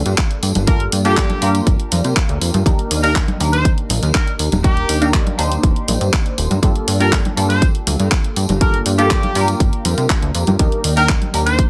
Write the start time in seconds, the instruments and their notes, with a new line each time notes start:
Already playing: analog polysynth A#3 D4 F4 G4 A4
0.06 analog synth bass G2, closed hi-hat, tambourine
0.18 kick, clap, closed hi-hat
0.31 closed hi-hat
0.43 analog synth bass G2, open hi-hat, tambourine
0.55 analog synth bass G1, closed hi-hat, tambourine, high conga
0.67 analog polysynth A#3 D4 F4 G4 A4, horn section A#4, kick, closed hi-hat, tambourine
0.80 closed hi-hat
0.92 analog synth bass G2, open hi-hat, tambourine
1.05 analog polysynth A#3 D4 F4 G4 A4, horn section G4, closed hi-hat, tambourine
1.17 kick, clap, closed hi-hat
1.30 closed hi-hat, high conga
1.41 analog synth bass G2, analog polysynth A#3 D4 F4 G4 A#4, open hi-hat, tambourine
1.55 closed hi-hat, tambourine
1.67 analog synth bass G1, kick, closed hi-hat, tambourine
1.80 closed hi-hat
1.91 analog synth bass F2, open hi-hat, tambourine, high conga
2.04 analog synth bass C3, closed hi-hat, tambourine
2.16 kick, clap, closed hi-hat
2.29 analog synth bass D2, closed hi-hat
2.41 analog synth bass F2, open hi-hat, tambourine
2.54 analog synth bass G2, closed hi-hat, tambourine, high conga
2.66 analog synth bass D#2, analog polysynth A#3 D4 D#4 G4 A#4, kick, closed hi-hat, tambourine
2.79 closed hi-hat
2.91 analog synth bass D#2, open hi-hat, tambourine
3.03 analog polysynth A#3 D4 D#4 G4 A#4, horn section A#4, closed hi-hat, tambourine
3.16 kick, clap, closed hi-hat, tambourine
3.28 closed hi-hat, high conga
3.40 analog synth bass D#2, analog polysynth A#3 D4 D#4 G4 A#4, open hi-hat, tambourine
3.53 horn section C5, closed hi-hat, tambourine
3.65 kick, closed hi-hat, tambourine
3.78 closed hi-hat
3.89 analog synth bass A#1, open hi-hat, tambourine, high conga
4.03 analog synth bass D#2, closed hi-hat, tambourine
4.15 horn section A#4, kick, clap, closed hi-hat
4.27 closed hi-hat
4.39 analog synth bass D#2, open hi-hat, tambourine
4.52 analog synth bass D#1, closed hi-hat, tambourine, high conga
4.64 analog polysynth A#3 D4 D#4 G4 A#4, horn section G4, kick, closed hi-hat, tambourine
4.77 closed hi-hat
4.89 analog synth bass D#2, open hi-hat, tambourine
5.01 analog polysynth A#3 D4 D#4 G4 A#4, closed hi-hat, tambourine
5.14 kick, clap, closed hi-hat
5.26 closed hi-hat, high conga
5.38 analog synth bass D#2, analog polysynth A#3 D4 D#4 G4 C5, open hi-hat, tambourine
5.51 closed hi-hat, tambourine
5.63 analog synth bass D#1, kick, closed hi-hat
5.76 closed hi-hat
5.88 analog synth bass A#1, open hi-hat, tambourine, high conga
6.01 analog synth bass G2, closed hi-hat, tambourine
6.13 kick, clap, closed hi-hat
6.26 closed hi-hat
6.38 analog synth bass D#1, open hi-hat, tambourine
6.51 analog synth bass G2, closed hi-hat, tambourine, high conga
6.62 analog synth bass G2, analog polysynth A#3 D4 F4 G4 A4, kick, closed hi-hat, tambourine
6.76 closed hi-hat
6.88 analog synth bass G2, open hi-hat, tambourine
7.00 analog polysynth A#3 D4 F4 G4 A4, horn section A#4, closed hi-hat, tambourine
7.12 kick, clap, closed hi-hat, tambourine
7.25 closed hi-hat, high conga
7.36 analog synth bass G2, analog polysynth A#3 D4 F4 G4 A4, open hi-hat, tambourine
7.49 horn section C5, closed hi-hat, tambourine
7.62 kick, closed hi-hat, tambourine
7.75 closed hi-hat
7.87 analog synth bass D2, open hi-hat, tambourine, high conga
8.00 analog synth bass G2, closed hi-hat, tambourine
8.12 kick, clap, closed hi-hat, tambourine
8.24 closed hi-hat
8.36 analog synth bass G2, open hi-hat, tambourine
8.49 analog synth bass G1, closed hi-hat, tambourine, high conga
8.61 analog polysynth A#3 D4 F4 G4 A4, horn section A#4, kick, closed hi-hat, tambourine
8.74 closed hi-hat
8.86 analog synth bass G2, open hi-hat, tambourine
8.98 analog polysynth A#3 D4 F4 G4 A4, horn section G4, closed hi-hat, tambourine
9.11 kick, clap, closed hi-hat, tambourine
9.23 closed hi-hat, high conga
9.35 analog synth bass G2, analog polysynth A#3 D4 F4 G4 A#4, open hi-hat, tambourine
9.48 closed hi-hat, tambourine
9.60 analog synth bass G1, kick, closed hi-hat
9.73 closed hi-hat
9.85 analog synth bass F2, open hi-hat, tambourine, high conga
9.98 analog synth bass C3, closed hi-hat, tambourine
10.10 kick, clap, closed hi-hat
10.22 analog synth bass D2, closed hi-hat
10.34 analog synth bass F2, open hi-hat, tambourine
10.46 analog synth bass G2, closed hi-hat, tambourine, high conga
10.59 analog synth bass D#2, analog polysynth A#3 D4 D#4 G4 A#4, kick, closed hi-hat, tambourine
10.72 closed hi-hat
10.84 analog synth bass D#2, open hi-hat, tambourine
10.97 analog polysynth A#3 D4 D#4 G4 A#4, horn section A#4, closed hi-hat, tambourine
11.09 kick, clap, closed hi-hat
11.22 closed hi-hat, high conga
11.33 analog synth bass D#2, analog polysynth A#3 D4 D#4 G4 A#4, open hi-hat, tambourine
11.46 horn section C5, closed hi-hat, tambourine
11.59 kick, closed hi-hat